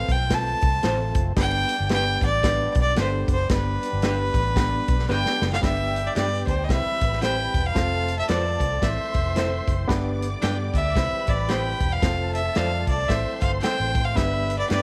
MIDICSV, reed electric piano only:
0, 0, Header, 1, 2, 480
1, 0, Start_track
1, 0, Tempo, 533333
1, 1231, Time_signature, 4, 2, 24, 8
1, 13338, End_track
2, 0, Start_track
2, 0, Title_t, "Reed electric piano"
2, 0, Program_c, 0, 4
2, 0, Note_on_c, 0, 60, 72
2, 0, Note_on_c, 0, 65, 62
2, 0, Note_on_c, 0, 69, 63
2, 0, Note_on_c, 0, 71, 83
2, 137, Note_off_c, 0, 60, 0
2, 139, Note_off_c, 0, 65, 0
2, 140, Note_off_c, 0, 69, 0
2, 141, Note_off_c, 0, 71, 0
2, 271, Note_on_c, 0, 60, 69
2, 274, Note_on_c, 0, 69, 66
2, 276, Note_on_c, 0, 65, 63
2, 276, Note_on_c, 0, 71, 72
2, 615, Note_off_c, 0, 60, 0
2, 617, Note_off_c, 0, 65, 0
2, 617, Note_off_c, 0, 69, 0
2, 617, Note_off_c, 0, 71, 0
2, 745, Note_on_c, 0, 60, 68
2, 749, Note_on_c, 0, 65, 60
2, 750, Note_on_c, 0, 69, 64
2, 753, Note_on_c, 0, 72, 76
2, 1091, Note_off_c, 0, 60, 0
2, 1093, Note_off_c, 0, 65, 0
2, 1093, Note_off_c, 0, 69, 0
2, 1095, Note_off_c, 0, 72, 0
2, 1226, Note_on_c, 0, 59, 72
2, 1229, Note_on_c, 0, 62, 69
2, 1229, Note_on_c, 0, 67, 71
2, 1237, Note_on_c, 0, 71, 83
2, 1571, Note_off_c, 0, 59, 0
2, 1572, Note_off_c, 0, 62, 0
2, 1572, Note_off_c, 0, 67, 0
2, 1576, Note_off_c, 0, 71, 0
2, 1711, Note_on_c, 0, 59, 71
2, 1715, Note_on_c, 0, 67, 67
2, 1716, Note_on_c, 0, 62, 65
2, 1718, Note_on_c, 0, 71, 79
2, 2052, Note_off_c, 0, 59, 0
2, 2054, Note_off_c, 0, 67, 0
2, 2055, Note_off_c, 0, 62, 0
2, 2056, Note_off_c, 0, 71, 0
2, 2186, Note_on_c, 0, 59, 75
2, 2188, Note_on_c, 0, 62, 65
2, 2191, Note_on_c, 0, 67, 66
2, 2193, Note_on_c, 0, 71, 70
2, 2529, Note_off_c, 0, 59, 0
2, 2530, Note_off_c, 0, 62, 0
2, 2531, Note_off_c, 0, 67, 0
2, 2532, Note_off_c, 0, 71, 0
2, 2662, Note_on_c, 0, 59, 70
2, 2665, Note_on_c, 0, 67, 61
2, 2666, Note_on_c, 0, 62, 66
2, 2673, Note_on_c, 0, 69, 82
2, 3006, Note_off_c, 0, 59, 0
2, 3008, Note_off_c, 0, 62, 0
2, 3008, Note_off_c, 0, 67, 0
2, 3011, Note_off_c, 0, 69, 0
2, 3149, Note_on_c, 0, 59, 78
2, 3152, Note_on_c, 0, 62, 68
2, 3154, Note_on_c, 0, 67, 68
2, 3161, Note_on_c, 0, 71, 79
2, 3489, Note_off_c, 0, 59, 0
2, 3491, Note_off_c, 0, 62, 0
2, 3492, Note_off_c, 0, 67, 0
2, 3495, Note_off_c, 0, 71, 0
2, 3623, Note_on_c, 0, 59, 66
2, 3627, Note_on_c, 0, 62, 67
2, 3627, Note_on_c, 0, 67, 68
2, 3632, Note_on_c, 0, 71, 79
2, 3965, Note_off_c, 0, 59, 0
2, 3967, Note_off_c, 0, 62, 0
2, 3967, Note_off_c, 0, 67, 0
2, 3970, Note_off_c, 0, 71, 0
2, 4103, Note_on_c, 0, 59, 84
2, 4106, Note_on_c, 0, 62, 75
2, 4107, Note_on_c, 0, 67, 79
2, 4112, Note_on_c, 0, 71, 88
2, 4445, Note_off_c, 0, 59, 0
2, 4446, Note_off_c, 0, 62, 0
2, 4447, Note_off_c, 0, 67, 0
2, 4449, Note_off_c, 0, 71, 0
2, 4581, Note_on_c, 0, 59, 86
2, 4583, Note_on_c, 0, 62, 77
2, 4583, Note_on_c, 0, 83, 63
2, 4585, Note_on_c, 0, 67, 75
2, 4586, Note_on_c, 0, 71, 83
2, 4848, Note_off_c, 0, 83, 0
2, 4869, Note_on_c, 0, 79, 68
2, 4924, Note_off_c, 0, 59, 0
2, 4924, Note_off_c, 0, 62, 0
2, 4925, Note_off_c, 0, 67, 0
2, 4926, Note_off_c, 0, 71, 0
2, 5048, Note_off_c, 0, 79, 0
2, 5055, Note_on_c, 0, 59, 93
2, 5059, Note_on_c, 0, 62, 80
2, 5061, Note_on_c, 0, 67, 84
2, 5064, Note_on_c, 0, 71, 94
2, 5400, Note_off_c, 0, 59, 0
2, 5403, Note_off_c, 0, 62, 0
2, 5403, Note_off_c, 0, 67, 0
2, 5405, Note_off_c, 0, 71, 0
2, 5539, Note_on_c, 0, 59, 66
2, 5543, Note_on_c, 0, 62, 61
2, 5545, Note_on_c, 0, 67, 60
2, 5550, Note_on_c, 0, 71, 76
2, 5882, Note_off_c, 0, 59, 0
2, 5884, Note_off_c, 0, 62, 0
2, 5885, Note_off_c, 0, 67, 0
2, 5888, Note_off_c, 0, 71, 0
2, 6022, Note_on_c, 0, 60, 64
2, 6026, Note_on_c, 0, 64, 62
2, 6030, Note_on_c, 0, 67, 62
2, 6034, Note_on_c, 0, 72, 75
2, 6363, Note_off_c, 0, 60, 0
2, 6365, Note_off_c, 0, 64, 0
2, 6368, Note_off_c, 0, 67, 0
2, 6369, Note_off_c, 0, 72, 0
2, 6501, Note_on_c, 0, 60, 66
2, 6503, Note_on_c, 0, 64, 60
2, 6507, Note_on_c, 0, 67, 59
2, 6510, Note_on_c, 0, 72, 71
2, 6843, Note_off_c, 0, 60, 0
2, 6844, Note_off_c, 0, 64, 0
2, 6846, Note_off_c, 0, 67, 0
2, 6848, Note_off_c, 0, 72, 0
2, 6974, Note_on_c, 0, 60, 90
2, 6976, Note_on_c, 0, 65, 89
2, 6979, Note_on_c, 0, 69, 81
2, 6979, Note_on_c, 0, 72, 99
2, 7320, Note_off_c, 0, 60, 0
2, 7321, Note_off_c, 0, 65, 0
2, 7322, Note_off_c, 0, 69, 0
2, 7323, Note_off_c, 0, 72, 0
2, 7461, Note_on_c, 0, 60, 67
2, 7462, Note_on_c, 0, 65, 60
2, 7466, Note_on_c, 0, 69, 65
2, 7469, Note_on_c, 0, 71, 74
2, 7803, Note_off_c, 0, 60, 0
2, 7804, Note_off_c, 0, 65, 0
2, 7806, Note_off_c, 0, 69, 0
2, 7808, Note_off_c, 0, 71, 0
2, 7939, Note_on_c, 0, 60, 70
2, 7940, Note_on_c, 0, 64, 58
2, 7942, Note_on_c, 0, 69, 60
2, 7947, Note_on_c, 0, 72, 72
2, 8283, Note_off_c, 0, 60, 0
2, 8284, Note_off_c, 0, 64, 0
2, 8284, Note_off_c, 0, 69, 0
2, 8287, Note_off_c, 0, 72, 0
2, 8420, Note_on_c, 0, 60, 68
2, 8422, Note_on_c, 0, 64, 66
2, 8426, Note_on_c, 0, 72, 76
2, 8428, Note_on_c, 0, 69, 64
2, 8764, Note_off_c, 0, 60, 0
2, 8765, Note_off_c, 0, 64, 0
2, 8767, Note_off_c, 0, 72, 0
2, 8768, Note_off_c, 0, 69, 0
2, 8888, Note_on_c, 0, 59, 112
2, 8892, Note_on_c, 0, 62, 103
2, 8894, Note_on_c, 0, 67, 102
2, 8899, Note_on_c, 0, 71, 122
2, 9239, Note_off_c, 0, 59, 0
2, 9240, Note_off_c, 0, 62, 0
2, 9241, Note_off_c, 0, 67, 0
2, 9244, Note_off_c, 0, 71, 0
2, 9382, Note_on_c, 0, 62, 62
2, 9383, Note_on_c, 0, 59, 69
2, 9387, Note_on_c, 0, 67, 65
2, 9390, Note_on_c, 0, 74, 75
2, 9726, Note_off_c, 0, 59, 0
2, 9726, Note_off_c, 0, 62, 0
2, 9728, Note_off_c, 0, 67, 0
2, 9730, Note_off_c, 0, 74, 0
2, 9863, Note_on_c, 0, 60, 71
2, 9866, Note_on_c, 0, 64, 62
2, 9869, Note_on_c, 0, 67, 61
2, 9870, Note_on_c, 0, 72, 81
2, 10207, Note_off_c, 0, 60, 0
2, 10209, Note_off_c, 0, 64, 0
2, 10210, Note_off_c, 0, 67, 0
2, 10211, Note_off_c, 0, 72, 0
2, 10339, Note_on_c, 0, 60, 66
2, 10341, Note_on_c, 0, 64, 61
2, 10343, Note_on_c, 0, 67, 64
2, 10350, Note_on_c, 0, 72, 76
2, 10686, Note_off_c, 0, 60, 0
2, 10687, Note_off_c, 0, 64, 0
2, 10688, Note_off_c, 0, 67, 0
2, 10691, Note_off_c, 0, 72, 0
2, 10822, Note_on_c, 0, 60, 93
2, 10823, Note_on_c, 0, 69, 83
2, 10824, Note_on_c, 0, 65, 84
2, 10830, Note_on_c, 0, 72, 98
2, 11168, Note_off_c, 0, 60, 0
2, 11168, Note_off_c, 0, 69, 0
2, 11169, Note_off_c, 0, 65, 0
2, 11172, Note_off_c, 0, 72, 0
2, 11300, Note_on_c, 0, 60, 72
2, 11302, Note_on_c, 0, 65, 65
2, 11305, Note_on_c, 0, 69, 68
2, 11307, Note_on_c, 0, 74, 75
2, 11648, Note_off_c, 0, 60, 0
2, 11649, Note_off_c, 0, 65, 0
2, 11650, Note_off_c, 0, 69, 0
2, 11651, Note_off_c, 0, 74, 0
2, 11778, Note_on_c, 0, 60, 63
2, 11781, Note_on_c, 0, 64, 58
2, 11781, Note_on_c, 0, 69, 64
2, 11785, Note_on_c, 0, 72, 79
2, 12128, Note_off_c, 0, 60, 0
2, 12129, Note_off_c, 0, 64, 0
2, 12129, Note_off_c, 0, 69, 0
2, 12132, Note_off_c, 0, 72, 0
2, 12267, Note_on_c, 0, 60, 68
2, 12269, Note_on_c, 0, 64, 59
2, 12271, Note_on_c, 0, 69, 57
2, 12274, Note_on_c, 0, 72, 70
2, 12614, Note_off_c, 0, 60, 0
2, 12614, Note_off_c, 0, 64, 0
2, 12615, Note_off_c, 0, 69, 0
2, 12617, Note_off_c, 0, 72, 0
2, 12736, Note_on_c, 0, 59, 90
2, 12740, Note_on_c, 0, 62, 84
2, 12740, Note_on_c, 0, 67, 87
2, 12741, Note_on_c, 0, 71, 105
2, 13089, Note_off_c, 0, 59, 0
2, 13091, Note_off_c, 0, 62, 0
2, 13091, Note_off_c, 0, 67, 0
2, 13092, Note_off_c, 0, 71, 0
2, 13223, Note_on_c, 0, 59, 68
2, 13224, Note_on_c, 0, 62, 65
2, 13231, Note_on_c, 0, 67, 64
2, 13234, Note_on_c, 0, 71, 79
2, 13338, Note_off_c, 0, 59, 0
2, 13338, Note_off_c, 0, 62, 0
2, 13338, Note_off_c, 0, 67, 0
2, 13338, Note_off_c, 0, 71, 0
2, 13338, End_track
0, 0, End_of_file